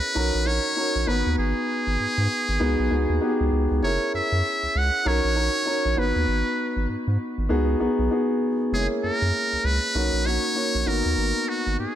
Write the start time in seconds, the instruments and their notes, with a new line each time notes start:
Already playing: grand piano C#4 E4 G#4 A#4, muted trumpet B4
0.15 analog synth bass B1, grand piano C#4 D#4 F#4 A#4
0.35 analog synth bass A#1
0.45 grand piano C#4 D#4 F#4 A#4, muted trumpet C#5
0.76 grand piano C#4 D#4 F#4 A#4
0.96 analog synth bass A#1
1.07 analog synth bass G#1, grand piano B3 D#4 F#4 B4, muted trumpet B4
1.27 analog synth bass D#2
1.38 analog synth bass G#1, muted trumpet G#4
1.87 analog synth bass G#1
2.00 analog synth bass G#2
2.18 analog synth bass G#2
2.49 analog synth bass G#1
2.60 analog synth bass C#2, grand piano B3 D#4 F#4 G#4
2.79 analog synth bass B1
2.90 analog synth bass C#2, grand piano B3 D#4 F#4 G#4
3.10 analog synth bass D#2
3.21 grand piano B3 D#4 F#4 G4
3.29 grand piano G#4
3.41 analog synth bass C#2
3.52 analog synth bass C#2
3.71 analog synth bass C#2
3.83 analog synth bass F#1, grand piano C#4 E4 G#4 A#4, muted trumpet C#5
4.14 analog synth bass F#2, muted trumpet E5
4.32 analog synth bass F#2
4.63 analog synth bass C#2
4.76 analog synth bass C#2, muted trumpet F#5
5.05 analog synth bass B1, grand piano C#4 D#4 F#4 A#4, muted trumpet C#5
5.24 analog synth bass A#1
5.35 grand piano C#4 D#4 F#4 A#4
5.66 grand piano C#4 D#4 F#4 A#4
5.85 analog synth bass A#1
5.97 analog synth bass G#1, grand piano B3 D#4 F#4 B4, muted trumpet B4
6.16 analog synth bass D#2
6.28 analog synth bass G#1
6.77 analog synth bass G#1
6.89 analog synth bass G#2
7.08 analog synth bass G#2
7.38 analog synth bass G#1
7.49 analog synth bass C#2, grand piano B3 D#4 F#4 G#4
7.80 analog synth bass B1, grand piano B3 D#4 F#4 G#4
7.99 analog synth bass B1
8.11 grand piano B3 D#4 F#4 G#4
8.73 analog synth bass F#1, grand piano G#3 C#4 E4 G#4, muted trumpet G#4
8.79 grand piano A#3
9.04 analog synth bass F#2, muted trumpet A#4
9.22 analog synth bass F#2
9.53 analog synth bass C#2
9.64 analog synth bass C#2, muted trumpet B4
9.94 analog synth bass B1, grand piano A#3 C#4 D#4 F#4
10.13 analog synth bass A#1
10.25 grand piano A#3 C#4 D#4 F#4, muted trumpet C#5
10.55 grand piano A#3 C#4 D#4 F#4
10.75 analog synth bass A#1
10.86 analog synth bass G#1, grand piano A#3 B3 D#4 F#4, muted trumpet A#4
11.06 analog synth bass D#2
11.18 analog synth bass G#1
11.49 muted trumpet F#4
11.67 analog synth bass G#1
11.79 analog synth bass G#2, muted trumpet G#4